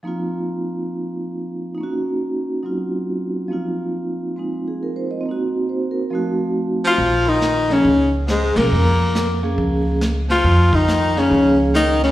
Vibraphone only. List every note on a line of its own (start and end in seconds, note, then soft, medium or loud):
0.03 1.77 F3 soft
0.03 1.76 A#3 soft
0.03 1.79 C4 soft
0.03 1.74 D#4 soft
0.07 1.79 F4 soft
1.75 3.49 A#3 soft
1.75 2.62 D#4 soft
1.81 3.53 C#4 soft
1.81 3.54 F#4 medium
2.63 3.50 F#3 soft
2.63 3.49 C4 soft
2.63 3.50 D#4 soft
2.63 3.52 F4 soft
3.48 5.23 F3 soft
3.48 5.24 A#3 soft
3.48 4.35 C4 soft
3.48 4.38 D#4 soft
3.53 5.25 F4 soft
4.36 5.24 G#3 soft
4.36 4.38 C4 soft
4.36 5.21 C4 soft
4.36 5.25 D#4 soft
4.68 4.89 G#4 soft
4.83 5.08 A#4 soft
4.96 5.18 C5 soft
5.11 5.33 D#5 soft
5.21 5.23 C4 soft
5.21 6.10 C4 soft
5.26 6.12 A#3 soft
5.26 6.13 D#4 soft
5.31 6.14 F#4 medium
5.69 6.02 C5 soft
5.91 6.21 A#4 soft
6.10 6.97 F3 soft
6.10 6.99 A3 soft
6.10 6.98 C4 soft
6.10 6.99 D#4 soft
6.15 7.00 F#4 medium
7.71 7.84 F3 medium
7.71 7.84 A#3 medium
7.71 7.84 C#4 medium
7.71 7.85 G#4 medium
8.58 8.70 F3 medium
8.58 8.71 A#3 medium
8.58 8.71 C#4 medium
8.58 8.71 A#4 medium
9.43 9.98 F3 medium
9.43 9.98 A#3 medium
9.43 9.99 C#4 medium
9.43 9.99 G#4 medium
11.17 11.72 F3 medium
11.17 11.72 A#3 medium
11.17 11.72 C#4 medium
11.17 11.72 G#4 medium